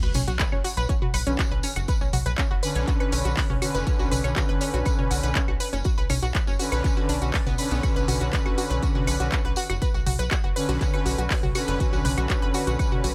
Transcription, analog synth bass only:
0.03 0.13 B1 medium
0.15 0.25 B1 medium
0.28 0.38 B1 medium
0.52 0.62 F#1 medium
0.77 0.87 B1 medium
1.14 1.25 B1 medium
1.27 1.37 B1 medium
1.51 1.62 B1 medium
1.76 1.86 F#1 medium
2.01 2.11 B1 medium
2.13 2.24 B1 medium
2.26 2.36 B1 medium
2.51 2.61 F#1 medium
2.75 2.86 B1 medium
3.12 3.23 B1 medium
3.25 3.35 B1 medium
3.50 3.60 B1 medium
3.75 3.85 F#1 medium
3.99 4.09 B1 medium
4.11 4.22 B1 medium
4.24 4.34 B1 medium
4.49 4.59 F#1 medium
4.74 4.84 B1 medium
5.11 5.21 B1 loud
5.23 5.33 B1 medium
5.48 5.58 B1 medium
5.73 5.83 F#1 medium
5.98 6.08 B1 medium
6.10 6.20 B1 medium
6.22 6.33 B1 medium
6.47 6.57 F#1 medium
6.72 6.82 B1 medium
7.09 7.20 B1 medium
7.22 7.32 B1 medium
7.46 7.57 B1 medium
7.71 7.81 B1 medium
7.96 8.06 B1 medium
8.08 8.19 B1 medium
8.21 8.31 B1 medium
8.46 8.56 F#1 medium
8.71 8.81 B1 medium
9.07 9.18 B1 loud
9.20 9.30 B1 medium
9.45 9.55 B1 medium
9.70 9.80 F#1 medium
9.94 10.05 B1 medium
10.06 10.17 B1 medium
10.19 10.29 B1 medium
10.44 10.54 F#1 medium
10.69 10.79 B1 medium
11.06 11.16 B1 medium
11.18 11.28 B1 medium
11.43 11.53 B1 medium
11.68 11.78 F#1 medium
11.93 12.03 B1 medium
12.05 12.15 B1 loud
12.18 12.28 B1 medium
12.42 12.52 F#1 medium
12.67 12.77 B1 medium
13.04 13.15 B1 loud

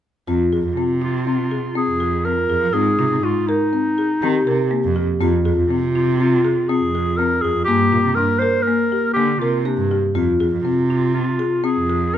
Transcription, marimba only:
0.28 0.40 C4 medium
0.53 0.65 G#4 medium
0.77 0.90 C4 medium
1.02 1.14 F4 medium
1.27 1.39 C4 medium
1.51 1.64 G#4 medium
1.76 1.88 C4 medium
2.00 2.13 G#4 medium
2.25 2.37 C4 medium
2.50 2.62 G#4 medium
2.74 2.86 C4 medium
2.99 3.11 F4 medium
3.23 3.36 D#4 medium
3.49 3.61 A#4 medium
3.73 3.85 C4 medium
3.98 4.10 G#4 medium
4.23 4.35 C4 medium
4.47 4.59 A#4 medium
4.71 4.83 A#3 medium
4.96 5.08 G4 medium
5.21 5.33 C4 medium
5.45 5.58 G#4 medium
5.71 5.83 C4 medium
5.95 6.08 F4 medium
6.20 6.32 C4 medium
6.45 6.57 G#4 medium
6.69 6.82 C4 medium
6.95 7.07 G#4 medium
7.19 7.31 C4 medium
7.44 7.57 G#4 medium
7.68 7.81 A#3 medium
7.92 8.05 F4 medium
8.17 8.30 D4 medium
8.42 8.54 A#4 medium
8.67 8.80 A#3 medium
8.92 9.04 G4 medium
9.17 9.29 A#3 medium
9.42 9.54 A#4 medium
9.66 9.78 A#3 medium
9.91 10.03 G4 medium
10.15 10.28 C4 medium
10.40 10.53 G#4 medium
10.65 10.77 C4 medium
10.90 11.02 F4 medium
11.15 11.27 C4 medium
11.39 11.52 G#4 medium
11.64 11.76 C4 medium
11.90 12.02 G#4 medium
12.14 12.18 C4 medium

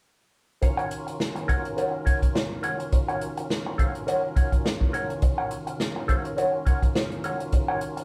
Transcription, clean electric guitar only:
0.62 muted clean electric guitar stroke soft
0.77 0.89 A#4 medium
0.77 0.90 C#5 medium
0.77 0.90 F#5 medium
0.91 muted clean electric guitar stroke soft
1.07 muted clean electric guitar stroke soft
1.36 muted clean electric guitar stroke soft
1.48 1.70 A#4 medium
1.48 1.64 C#5 medium
1.48 1.63 F#5 medium
1.65 muted clean electric guitar stroke soft
1.77 1.99 A#4 medium
1.77 1.93 C#5 medium
1.77 1.92 F#5 medium
1.93 muted clean electric guitar stroke soft
2.05 2.23 A#4 medium
2.05 2.21 C#5 medium
2.05 2.20 F#5 medium
2.21 muted clean electric guitar stroke soft
2.35 muted clean electric guitar stroke soft
2.63 2.81 A#4 medium
2.63 2.79 C#5 medium
2.63 2.78 F#5 medium
2.79 muted clean electric guitar stroke soft
2.92 muted clean electric guitar stroke soft
3.08 3.20 A#4 medium
3.08 3.21 C#5 medium
3.08 3.21 F#5 medium
3.21 muted clean electric guitar stroke soft
3.38 muted clean electric guitar stroke soft
3.66 muted clean electric guitar stroke soft
3.78 4.00 A#4 medium
3.78 3.94 C#5 medium
3.78 3.93 F#5 medium
3.94 muted clean electric guitar stroke soft
4.07 4.29 A#4 medium
4.07 4.23 C#5 medium
4.07 4.22 F#5 medium
4.23 muted clean electric guitar stroke soft
4.36 4.54 A#4 medium
4.36 4.52 C#5 medium
4.36 4.51 F#5 medium
4.52 muted clean electric guitar stroke soft
4.65 muted clean electric guitar stroke soft
4.93 5.11 A#4 medium
4.93 5.10 C#5 medium
4.93 5.09 F#5 medium
5.10 muted clean electric guitar stroke soft
5.22 muted clean electric guitar stroke soft
5.38 5.50 A#4 medium
5.38 5.51 C#5 medium
5.38 5.51 F#5 medium
5.51 muted clean electric guitar stroke soft
5.67 muted clean electric guitar stroke soft
5.96 muted clean electric guitar stroke soft
6.08 6.30 A#4 medium
6.08 6.25 C#5 medium
6.08 6.23 F#5 medium
6.25 muted clean electric guitar stroke soft
6.37 6.59 A#4 medium
6.37 6.53 C#5 medium
6.37 6.52 F#5 medium
6.54 muted clean electric guitar stroke soft
6.65 6.84 A#4 medium
6.65 6.82 C#5 medium
6.65 6.81 F#5 medium
6.82 muted clean electric guitar stroke soft
6.95 muted clean electric guitar stroke soft
7.24 7.42 A#4 medium
7.24 7.40 C#5 medium
7.24 7.39 F#5 medium
7.40 muted clean electric guitar stroke soft
7.53 muted clean electric guitar stroke soft
7.68 7.80 A#4 medium
7.68 7.81 C#5 medium
7.68 7.81 F#5 medium
7.81 muted clean electric guitar stroke soft
7.97 muted clean electric guitar stroke soft

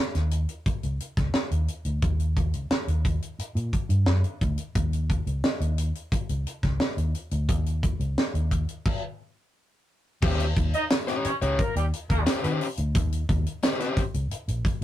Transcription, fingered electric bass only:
0.15 0.44 D#2 medium
0.66 muted fingered electric bass stroke soft
0.83 0.98 C#2 medium
1.17 1.32 C#2 medium
1.34 muted fingered electric bass stroke soft
1.51 1.66 D#2 medium
1.85 2.00 D2 medium
2.03 2.54 D#2 medium
2.54 2.68 C#2 medium
2.70 muted fingered electric bass stroke soft
2.88 3.17 D#2 medium
3.39 muted fingered electric bass stroke soft
3.55 3.70 A#2 medium
3.89 4.04 G2 medium
4.07 4.22 F#2 medium
4.41 4.56 D2 medium
4.75 5.19 D#2 medium
5.26 5.41 C#2 medium
5.43 muted fingered electric bass stroke soft
5.60 5.90 D#2 medium
6.12 muted fingered electric bass stroke soft
6.29 6.44 C#2 medium
6.63 6.78 C#2 medium
6.80 muted fingered electric bass stroke soft
6.97 7.12 D#2 medium
7.32 7.49 D2 medium
7.49 7.93 D#2 medium
8.00 8.15 C#2 medium
8.17 muted fingered electric bass stroke soft
8.34 8.63 D#2 medium
10.23 10.52 D#2 loud
10.57 10.71 D#2 loud
11.25 muted fingered electric bass stroke soft
11.42 11.56 C#2 loud
11.59 muted fingered electric bass stroke soft
11.76 11.90 D#2 medium
12.10 12.25 D#2 medium
12.44 12.59 D#3 medium
12.78 12.95 D2 loud
12.95 13.24 D#2 loud
13.29 13.44 D#2 loud
13.97 muted fingered electric bass stroke soft
14.14 14.29 C#2 loud
14.31 muted fingered electric bass stroke soft
14.48 14.62 A#1 medium

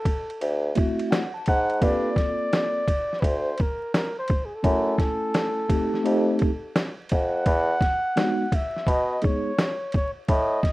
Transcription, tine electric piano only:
0.75 1.20 A3 medium
0.75 1.20 C4 medium
0.75 1.21 E4 medium
0.75 1.21 F#4 medium
0.75 1.09 E5 medium
1.11 1.33 F#5 medium
1.34 1.78 A5 medium
1.81 2.82 A#3 medium
1.81 2.83 C4 medium
1.81 2.83 F4 medium
1.81 2.83 A4 medium
4.63 5.65 A3 medium
4.63 5.65 C#4 medium
4.63 5.65 E4 medium
4.63 5.65 G#5 medium
5.69 6.02 A3 medium
5.69 6.03 C4 medium
5.69 6.03 D#4 medium
5.69 6.04 G4 medium
6.04 6.49 A3 medium
6.04 6.49 C4 medium
6.04 6.50 D#4 medium
6.04 6.50 G4 medium
8.16 8.45 G#3 medium
8.16 8.45 B3 medium
8.16 8.45 D#4 medium
8.16 8.45 F#4 medium
9.22 9.51 G#3 medium
9.22 9.51 B3 medium
9.22 9.51 D#4 medium
9.22 9.51 G#4 medium

